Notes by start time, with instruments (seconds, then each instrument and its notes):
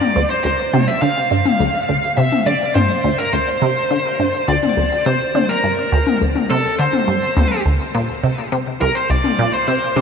Already playing: lead electric guitar D5
0.01 high tom
0.16 synth arpeggio sound D2
0.30 lead electric guitar C5, shaker
0.44 synth arpeggio sound D2, lead electric guitar C5, shaker
0.59 shaker
0.74 synth arpeggio sound C3, high tom
0.88 lead electric guitar E5, shaker
1.02 synth arpeggio sound D3, lead electric guitar F5, shaker
1.17 shaker
1.31 synth arpeggio sound G2
1.46 high tom, shaker
1.60 synth arpeggio sound D2, shaker
1.89 synth arpeggio sound D2
2.03 shaker
2.17 synth arpeggio sound C3, lead electric guitar E5, shaker
2.32 high tom
2.46 synth arpeggio sound D3, lead electric guitar D5
2.61 shaker
2.75 synth arpeggio sound G2, lead electric guitar C5, high tom, shaker
2.90 shaker
3.04 synth arpeggio sound D2
3.18 lead electric guitar A#4, shaker
3.33 synth arpeggio sound D2, lead electric guitar C5, shaker
3.47 shaker
3.62 synth arpeggio sound C3
3.76 shaker
3.91 synth arpeggio sound D3, shaker
4.19 synth arpeggio sound G2
4.34 shaker
4.48 synth arpeggio sound D2, lead electric guitar D5, shaker
4.63 high tom
4.77 synth arpeggio sound D2
4.92 shaker
5.06 synth arpeggio sound C3, lead electric guitar C5, shaker
5.21 shaker
5.35 synth arpeggio sound D3, high tom
5.49 lead electric guitar A#4, shaker
5.64 synth arpeggio sound G2, shaker
5.78 shaker
5.92 synth arpeggio sound D2
6.07 high tom, shaker
6.21 synth arpeggio sound D2, shaker
6.35 high tom
6.50 synth arpeggio sound C3, lead electric guitar A4
6.64 shaker
6.79 synth arpeggio sound D3, lead electric guitar C5, shaker
6.93 high tom
7.08 synth arpeggio sound G2
7.22 shaker
7.37 synth arpeggio sound D2, high tom, shaker
7.51 shaker
7.66 synth arpeggio sound D2
7.80 shaker
7.94 synth arpeggio sound A#2, shaker
8.09 shaker
8.24 synth arpeggio sound C3
8.38 shaker
8.52 synth arpeggio sound C3, shaker
8.81 synth arpeggio sound C2, lead electric guitar A#4
8.95 lead electric guitar C5, shaker
9.10 synth arpeggio sound C2, lead electric guitar D5, shaker
9.24 high tom
9.39 synth arpeggio sound A#2
9.53 lead electric guitar C5, shaker
9.68 synth arpeggio sound C3, lead electric guitar C5, shaker
9.82 shaker
9.96 synth arpeggio sound C3, high tom